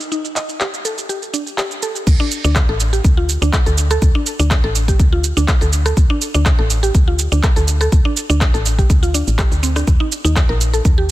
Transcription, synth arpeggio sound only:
0.12 0.24 D#4 medium
0.36 0.48 D#5 medium
0.61 0.68 G4 medium
0.85 0.97 A4 medium
1.09 1.21 G4 medium
1.34 1.45 D4 medium
1.58 1.70 G4 medium
1.83 1.94 A4 medium
2.20 2.26 D4 loud
2.44 2.51 D4 loud
2.69 2.75 A4 medium
2.93 3.04 G4 medium
3.17 3.28 F4 medium
3.42 3.48 D4 loud
3.66 3.73 A4 medium
3.91 4.01 A4 loud
4.15 4.21 D4 loud
4.40 4.46 D4 loud
4.64 4.70 A4 medium
4.88 4.99 G4 medium
5.13 5.23 F4 medium
5.37 5.43 D4 loud
5.61 5.67 A4 medium
5.86 5.96 A4 loud
6.10 6.16 D4 loud
6.34 6.41 D4 loud
6.59 6.65 A4 medium
6.83 6.94 G4 medium
7.08 7.18 F4 medium
7.32 7.38 D4 loud
7.56 7.63 A4 medium
7.81 7.91 A4 loud
8.05 8.11 D4 loud
8.30 8.36 D4 loud
8.54 8.60 A4 medium
8.79 8.89 G4 medium
9.03 9.13 F4 medium
9.14 9.27 D4 medium
9.39 9.51 G4 loud
9.63 9.70 C4 medium
9.76 9.87 D4 medium
10.00 10.07 D#4 loud
10.25 10.31 D#4 loud
10.49 10.55 A#4 medium
10.74 10.84 A4 medium
10.98 11.08 G4 medium

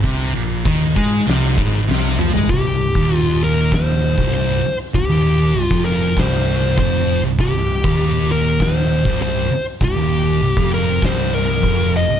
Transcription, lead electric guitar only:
2.50 3.17 G4 medium
3.17 3.43 F4 medium
3.44 3.71 A#4 medium
3.75 4.33 C5 medium
4.34 4.76 C5 medium
4.95 5.62 G4 medium
5.62 5.85 F4 medium
5.85 6.17 A#4 medium
6.19 6.75 C5 medium
6.79 7.21 C5 medium
7.41 8.31 G4 medium
8.32 8.62 A#4 medium
8.62 9.18 C5 medium
9.22 9.64 C5 medium
9.84 10.70 G4 medium
10.74 11.04 A#4 medium
11.05 11.32 C5 medium
11.35 11.91 A#4 medium
11.97 12.20 D#5 loud

